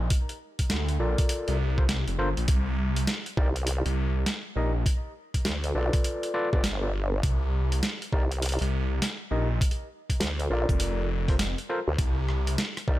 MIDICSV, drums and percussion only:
0, 0, Header, 1, 2, 480
1, 0, Start_track
1, 0, Tempo, 594059
1, 86, Time_signature, 4, 2, 24, 8
1, 10498, End_track
2, 0, Start_track
2, 0, Title_t, "Drums"
2, 84, Note_on_c, 9, 42, 75
2, 86, Note_on_c, 9, 36, 108
2, 164, Note_off_c, 9, 42, 0
2, 167, Note_off_c, 9, 36, 0
2, 236, Note_on_c, 9, 42, 36
2, 317, Note_off_c, 9, 42, 0
2, 476, Note_on_c, 9, 42, 52
2, 478, Note_on_c, 9, 36, 61
2, 557, Note_off_c, 9, 42, 0
2, 559, Note_off_c, 9, 36, 0
2, 564, Note_on_c, 9, 38, 107
2, 564, Note_on_c, 9, 42, 76
2, 645, Note_off_c, 9, 38, 0
2, 645, Note_off_c, 9, 42, 0
2, 715, Note_on_c, 9, 42, 35
2, 796, Note_off_c, 9, 42, 0
2, 956, Note_on_c, 9, 42, 54
2, 958, Note_on_c, 9, 36, 100
2, 1037, Note_off_c, 9, 42, 0
2, 1039, Note_off_c, 9, 36, 0
2, 1044, Note_on_c, 9, 42, 76
2, 1125, Note_off_c, 9, 42, 0
2, 1194, Note_on_c, 9, 42, 36
2, 1274, Note_off_c, 9, 42, 0
2, 1437, Note_on_c, 9, 36, 97
2, 1518, Note_off_c, 9, 36, 0
2, 1526, Note_on_c, 9, 38, 112
2, 1526, Note_on_c, 9, 42, 74
2, 1607, Note_off_c, 9, 38, 0
2, 1607, Note_off_c, 9, 42, 0
2, 1677, Note_on_c, 9, 42, 34
2, 1758, Note_off_c, 9, 42, 0
2, 1917, Note_on_c, 9, 42, 35
2, 1998, Note_off_c, 9, 42, 0
2, 2003, Note_on_c, 9, 42, 80
2, 2006, Note_on_c, 9, 36, 121
2, 2084, Note_off_c, 9, 42, 0
2, 2087, Note_off_c, 9, 36, 0
2, 2395, Note_on_c, 9, 42, 54
2, 2476, Note_off_c, 9, 42, 0
2, 2484, Note_on_c, 9, 38, 111
2, 2484, Note_on_c, 9, 42, 81
2, 2565, Note_off_c, 9, 38, 0
2, 2565, Note_off_c, 9, 42, 0
2, 2636, Note_on_c, 9, 42, 37
2, 2716, Note_off_c, 9, 42, 0
2, 2726, Note_on_c, 9, 36, 108
2, 2807, Note_off_c, 9, 36, 0
2, 2875, Note_on_c, 9, 42, 52
2, 2956, Note_off_c, 9, 42, 0
2, 2963, Note_on_c, 9, 42, 79
2, 3044, Note_off_c, 9, 42, 0
2, 3117, Note_on_c, 9, 42, 38
2, 3197, Note_off_c, 9, 42, 0
2, 3445, Note_on_c, 9, 38, 111
2, 3445, Note_on_c, 9, 42, 77
2, 3526, Note_off_c, 9, 38, 0
2, 3526, Note_off_c, 9, 42, 0
2, 3925, Note_on_c, 9, 36, 123
2, 3928, Note_on_c, 9, 42, 79
2, 4006, Note_off_c, 9, 36, 0
2, 4008, Note_off_c, 9, 42, 0
2, 4317, Note_on_c, 9, 36, 63
2, 4318, Note_on_c, 9, 42, 54
2, 4398, Note_off_c, 9, 36, 0
2, 4399, Note_off_c, 9, 42, 0
2, 4404, Note_on_c, 9, 38, 119
2, 4404, Note_on_c, 9, 42, 77
2, 4484, Note_off_c, 9, 38, 0
2, 4484, Note_off_c, 9, 42, 0
2, 4555, Note_on_c, 9, 42, 37
2, 4636, Note_off_c, 9, 42, 0
2, 4794, Note_on_c, 9, 42, 53
2, 4796, Note_on_c, 9, 36, 108
2, 4875, Note_off_c, 9, 42, 0
2, 4877, Note_off_c, 9, 36, 0
2, 4884, Note_on_c, 9, 42, 76
2, 4965, Note_off_c, 9, 42, 0
2, 5036, Note_on_c, 9, 42, 41
2, 5117, Note_off_c, 9, 42, 0
2, 5276, Note_on_c, 9, 36, 107
2, 5356, Note_off_c, 9, 36, 0
2, 5363, Note_on_c, 9, 38, 115
2, 5363, Note_on_c, 9, 42, 80
2, 5444, Note_off_c, 9, 38, 0
2, 5444, Note_off_c, 9, 42, 0
2, 5845, Note_on_c, 9, 36, 121
2, 5845, Note_on_c, 9, 42, 81
2, 5926, Note_off_c, 9, 36, 0
2, 5926, Note_off_c, 9, 42, 0
2, 6238, Note_on_c, 9, 42, 54
2, 6319, Note_off_c, 9, 42, 0
2, 6325, Note_on_c, 9, 38, 120
2, 6325, Note_on_c, 9, 42, 80
2, 6406, Note_off_c, 9, 38, 0
2, 6406, Note_off_c, 9, 42, 0
2, 6480, Note_on_c, 9, 42, 36
2, 6561, Note_off_c, 9, 42, 0
2, 6565, Note_on_c, 9, 36, 111
2, 6646, Note_off_c, 9, 36, 0
2, 6719, Note_on_c, 9, 42, 52
2, 6800, Note_off_c, 9, 42, 0
2, 6806, Note_on_c, 9, 42, 72
2, 6833, Note_off_c, 9, 42, 0
2, 6833, Note_on_c, 9, 42, 59
2, 6859, Note_off_c, 9, 42, 0
2, 6859, Note_on_c, 9, 42, 49
2, 6886, Note_off_c, 9, 42, 0
2, 6886, Note_on_c, 9, 42, 43
2, 6892, Note_off_c, 9, 42, 0
2, 6892, Note_on_c, 9, 42, 34
2, 6939, Note_off_c, 9, 42, 0
2, 6939, Note_on_c, 9, 42, 28
2, 6965, Note_off_c, 9, 42, 0
2, 6965, Note_on_c, 9, 42, 37
2, 7046, Note_off_c, 9, 42, 0
2, 7288, Note_on_c, 9, 38, 115
2, 7288, Note_on_c, 9, 42, 80
2, 7369, Note_off_c, 9, 38, 0
2, 7369, Note_off_c, 9, 42, 0
2, 7766, Note_on_c, 9, 36, 119
2, 7770, Note_on_c, 9, 42, 77
2, 7846, Note_off_c, 9, 36, 0
2, 7847, Note_off_c, 9, 42, 0
2, 7847, Note_on_c, 9, 42, 36
2, 7928, Note_off_c, 9, 42, 0
2, 8157, Note_on_c, 9, 36, 64
2, 8160, Note_on_c, 9, 42, 53
2, 8238, Note_off_c, 9, 36, 0
2, 8241, Note_off_c, 9, 42, 0
2, 8246, Note_on_c, 9, 38, 118
2, 8246, Note_on_c, 9, 42, 78
2, 8327, Note_off_c, 9, 38, 0
2, 8327, Note_off_c, 9, 42, 0
2, 8399, Note_on_c, 9, 42, 34
2, 8480, Note_off_c, 9, 42, 0
2, 8638, Note_on_c, 9, 36, 103
2, 8640, Note_on_c, 9, 42, 50
2, 8718, Note_off_c, 9, 36, 0
2, 8721, Note_off_c, 9, 42, 0
2, 8724, Note_on_c, 9, 42, 78
2, 8805, Note_off_c, 9, 42, 0
2, 9117, Note_on_c, 9, 36, 108
2, 9118, Note_on_c, 9, 42, 38
2, 9198, Note_off_c, 9, 36, 0
2, 9199, Note_off_c, 9, 42, 0
2, 9205, Note_on_c, 9, 38, 116
2, 9205, Note_on_c, 9, 42, 78
2, 9286, Note_off_c, 9, 38, 0
2, 9286, Note_off_c, 9, 42, 0
2, 9359, Note_on_c, 9, 42, 34
2, 9440, Note_off_c, 9, 42, 0
2, 9684, Note_on_c, 9, 36, 122
2, 9685, Note_on_c, 9, 42, 72
2, 9765, Note_off_c, 9, 36, 0
2, 9766, Note_off_c, 9, 42, 0
2, 9927, Note_on_c, 9, 37, 46
2, 10007, Note_off_c, 9, 37, 0
2, 10078, Note_on_c, 9, 42, 52
2, 10159, Note_off_c, 9, 42, 0
2, 10166, Note_on_c, 9, 38, 110
2, 10166, Note_on_c, 9, 42, 72
2, 10247, Note_off_c, 9, 38, 0
2, 10247, Note_off_c, 9, 42, 0
2, 10320, Note_on_c, 9, 37, 49
2, 10320, Note_on_c, 9, 42, 35
2, 10400, Note_off_c, 9, 37, 0
2, 10400, Note_off_c, 9, 42, 0
2, 10404, Note_on_c, 9, 36, 111
2, 10485, Note_off_c, 9, 36, 0
2, 10498, End_track
0, 0, End_of_file